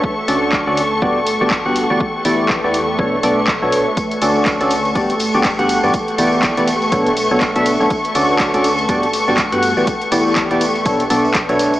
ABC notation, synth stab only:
X:1
M:4/4
L:1/16
Q:"Swing 16ths" 1/4=122
K:D
V:1 name="Synth stab"
z2 [D,CFAd]3 [D,CFAd] z2 [G,,B,FGd] z2 [G,,B,FGd] z [G,,B,FGf]2 [E,B,FGd] | z2 [E,B,EGd]3 [E,B,EGd] z2 [B,,B,DAc] z [B,,B,DAd] z2 [B,,B,DAc]2 z | z2 [D,CFAd]3 [D,CFAd] z2 [G,,B,FGd] z2 [G,,B,FGd] z [G,,B,FGf]2 [E,B,FGd] | z2 [E,B,EGd]3 [E,B,EGd] z2 [B,,B,DAc] z2 [B,,B,DAc] z [B,,B,DAe]2 [B,DAc] |
z2 [D,CFAd]3 [D,CFAd] z2 [G,,B,FGd] z2 [G,,B,FGd] z [G,,B,FGf]2 [E,B,FGd] | z2 [E,B,EGd]3 [E,B,EGd] z2 [B,,B,DAc] z [B,,B,DAd] z2 [B,,B,DAc]2 z |]